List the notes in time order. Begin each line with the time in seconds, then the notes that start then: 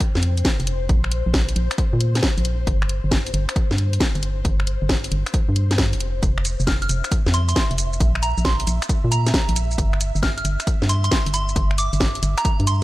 Already playing: C5
0.00 kick, closed hi-hat
0.15 F2, snare
0.23 closed hi-hat
0.38 closed hi-hat
0.45 kick, snare
0.60 F1, closed hi-hat
0.67 closed hi-hat
0.89 A#1, kick, closed hi-hat
1.04 finger snap
1.12 closed hi-hat
1.26 A#1
1.34 kick, snare
1.49 closed hi-hat
1.56 A#1, closed hi-hat
1.71 finger snap, closed hi-hat
1.78 kick, closed hi-hat
1.93 A#2
2.01 closed hi-hat
2.15 snare, closed hi-hat
2.23 kick, snare
2.38 A#1, closed hi-hat
2.45 closed hi-hat
2.67 G1, kick, closed hi-hat
2.82 finger snap
2.89 closed hi-hat
3.04 G1
3.12 kick, snare
3.27 closed hi-hat
3.34 G1, closed hi-hat
3.49 finger snap, closed hi-hat
3.56 kick, closed hi-hat
3.71 G2, snare
3.78 closed hi-hat
3.93 closed hi-hat
4.00 kick, snare
4.15 G1, closed hi-hat
4.23 closed hi-hat
4.45 G1, kick, closed hi-hat
4.60 finger snap
4.67 closed hi-hat
4.82 G1
4.89 kick, snare
5.04 closed hi-hat
5.12 G1, closed hi-hat
5.26 finger snap, closed hi-hat
5.34 kick, closed hi-hat
5.49 G2
5.56 closed hi-hat
5.71 snare, closed hi-hat
5.78 kick, snare
5.93 F1, closed hi-hat
6.00 closed hi-hat
6.23 F1 E5, kick, closed hi-hat, shaker
6.38 finger snap
6.45 closed hi-hat, shaker
6.60 F1, shaker
6.67 F6, kick, snare, shaker
6.82 F6, closed hi-hat
6.89 F1, closed hi-hat, shaker
7.04 finger snap, closed hi-hat, shaker
7.12 kick, closed hi-hat, shaker
7.26 F2, snare
7.34 C6, closed hi-hat, shaker
7.49 C6, closed hi-hat, shaker
7.56 C6, kick, snare, shaker
7.71 F1, closed hi-hat
7.78 closed hi-hat, shaker
7.93 shaker
8.00 A#1, kick, closed hi-hat, shaker
8.15 finger snap
8.22 A#5, closed hi-hat, shaker
8.38 A#1, shaker
8.45 C6, kick, snare
8.60 closed hi-hat
8.67 A#1, closed hi-hat, shaker
8.82 finger snap, closed hi-hat, shaker
8.89 kick, closed hi-hat, shaker
9.04 A#2
9.12 A#5, closed hi-hat, shaker
9.27 snare, closed hi-hat, shaker
9.34 kick, snare, shaker
9.49 A#1, closed hi-hat
9.56 closed hi-hat, shaker
9.71 shaker
9.78 G1, kick, closed hi-hat, shaker
9.93 finger snap
10.01 closed hi-hat, shaker
10.15 G1, shaker
10.23 F6, kick, snare, shaker
10.38 F6, closed hi-hat
10.45 G1, closed hi-hat, shaker
10.60 finger snap, closed hi-hat, shaker
10.67 kick, closed hi-hat, shaker
10.82 G2, snare
10.89 C6, closed hi-hat, shaker
11.04 C6, closed hi-hat, shaker
11.12 C6, kick, snare, shaker
11.26 G1, closed hi-hat
11.34 C6, closed hi-hat, shaker
11.49 shaker
11.56 G1, kick, closed hi-hat, shaker
11.71 finger snap
11.78 D6, closed hi-hat, shaker
11.93 G1, closed hi-hat, shaker
12.00 kick, snare, shaker
12.15 closed hi-hat
12.23 G1, closed hi-hat, shaker
12.38 A#5, finger snap, closed hi-hat, shaker
12.45 A#5, kick, closed hi-hat, shaker
12.60 G2, closed hi-hat
12.67 C6, closed hi-hat, shaker